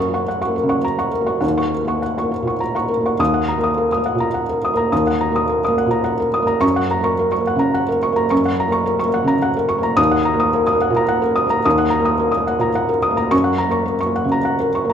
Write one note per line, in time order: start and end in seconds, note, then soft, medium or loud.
0.00 1.39 F#2 medium
0.00 0.21 A#4 soft
0.00 0.14 F#5 soft
0.00 0.14 C#6 medium
0.09 0.39 A#3 soft
0.14 0.26 F#5 soft
0.14 0.26 C#6 soft
0.28 0.40 F#5 soft
0.42 0.54 F#5 soft
0.42 0.54 C#6 soft
0.46 0.77 A#3 soft
0.56 0.79 A#4 soft
0.63 0.95 C#3 soft
0.69 0.83 F#5 soft
0.69 0.82 C#6 soft
0.84 1.07 A#5 soft
0.99 1.12 F#5 soft
0.99 1.12 C#6 soft
1.11 1.36 A#4 soft
1.21 1.42 A#3 soft
1.27 1.39 F#5 soft
1.27 1.40 C#6 soft
1.41 3.15 D#2 soft
1.41 1.56 F#5 soft
1.57 1.71 F#5 soft
1.57 1.71 C#6 medium
1.74 1.97 A#4 soft
1.85 2.15 A#3 soft
1.85 2.01 F#5 soft
1.85 2.01 C#6 soft
2.02 2.16 F#5 soft
2.18 2.53 A#3 soft
2.18 2.31 F#5 soft
2.18 2.31 C#6 soft
2.31 2.55 A#4 soft
2.43 2.73 A#2 soft
2.47 2.60 F#5 soft
2.47 2.60 C#6 soft
2.60 2.84 A#5 soft
2.75 2.89 F#5 soft
2.75 2.89 C#6 soft
2.89 3.13 A#4 soft
3.00 3.20 A#3 soft
3.06 3.18 F#5 soft
3.06 3.18 C#6 soft
3.19 4.87 D#2 medium
3.19 3.43 D#6 medium
3.34 3.57 F#5 soft
3.48 3.71 A#5 soft
3.58 3.88 A#3 soft
3.64 3.86 D#6 soft
3.78 4.00 A#4 soft
3.92 4.14 D#6 soft
3.97 4.27 A#3 soft
4.06 4.28 F#5 soft
4.15 4.45 A#2 soft
4.20 4.43 A#5 soft
4.34 4.57 F#5 soft
4.49 4.72 A#4 soft
4.65 4.87 D#6 soft
4.74 5.04 A#3 soft
4.74 5.00 A#5 soft
4.92 6.59 D#2 medium
4.92 5.15 D#6 soft
5.07 5.30 F#5 soft
5.21 5.44 A#5 medium
5.31 5.62 A#3 soft
5.36 5.58 D#6 soft
5.49 5.72 A#4 soft
5.64 5.99 A#3 soft
5.64 5.87 D#6 soft
5.78 6.00 F#5 soft
5.86 6.17 A#2 soft
5.91 6.14 A#5 soft
6.04 6.28 F#5 soft
6.20 6.43 A#4 soft
6.34 6.57 D#6 soft
6.42 6.62 A#3 soft
6.47 6.62 A#5 medium
6.60 8.26 F#2 medium
6.60 6.84 C#6 medium
6.76 6.99 F#5 medium
6.91 7.14 A#5 medium
7.01 7.31 A#3 soft
7.01 7.27 C#6 medium
7.19 7.42 A#4 soft
7.32 7.55 C#6 medium
7.38 7.69 A#3 soft
7.47 7.70 F#5 medium
7.56 7.87 C#3 soft
7.56 7.83 A#5 medium
7.74 7.98 F#5 medium
7.88 8.11 A#4 medium
8.03 8.25 C#6 medium
8.12 8.42 A#3 soft
8.12 8.39 A#5 medium
8.30 9.94 F#2 medium
8.30 8.53 C#6 medium
8.46 8.68 F#5 medium
8.60 8.82 A#5 medium
8.68 8.98 A#3 medium
8.72 8.95 C#6 medium
8.86 9.09 A#4 medium
8.99 9.22 C#6 medium
9.04 9.34 A#3 soft
9.14 9.36 F#5 medium
9.24 9.53 C#3 medium
9.24 9.50 A#5 medium
9.42 9.64 F#5 medium
9.57 9.79 A#4 medium
9.69 9.92 C#6 medium
9.78 9.97 A#3 soft
9.83 9.97 A#5 medium
9.97 11.61 D#2 medium
9.97 10.20 D#6 medium
10.11 10.34 F#5 medium
10.25 10.48 A#5 medium
10.34 10.64 A#3 medium
10.40 10.62 D#6 medium
10.54 10.76 A#4 medium
10.67 10.90 D#6 medium
10.73 11.02 A#3 medium
10.81 11.04 F#5 medium
10.90 11.20 A#2 soft
10.96 11.18 A#5 medium
11.08 11.31 F#5 medium
11.22 11.45 A#4 medium
11.36 11.59 D#6 medium
11.47 11.76 A#3 soft
11.47 11.73 A#5 medium
11.65 13.29 D#2 medium
11.65 11.88 D#6 medium
11.78 12.01 F#5 medium
11.90 12.14 A#5 medium
12.00 12.31 A#3 medium
12.05 12.28 D#6 medium
12.19 12.42 A#4 medium
12.32 12.55 D#6 medium
12.38 12.68 A#3 soft
12.47 12.70 F#5 medium
12.59 12.88 A#2 soft
12.59 12.84 A#5 medium
12.75 12.98 F#5 medium
12.89 13.12 A#4 medium
13.03 13.26 D#6 medium
13.11 13.31 A#3 soft
13.17 13.32 A#5 medium
13.31 14.93 F#2 medium
13.31 13.54 C#6 medium
13.44 13.68 F#5 medium
13.58 13.82 A#5 medium
13.69 14.00 A#3 soft
13.69 13.96 C#6 soft
13.85 14.10 A#4 medium
14.01 14.25 C#6 medium
14.06 14.38 A#3 soft
14.16 14.40 F#5 soft
14.25 14.57 C#3 soft
14.32 14.55 A#5 medium
14.45 14.69 F#5 medium
14.60 14.84 A#4 soft
14.75 14.93 C#6 soft
14.85 14.93 A#3 soft
14.90 14.93 A#5 soft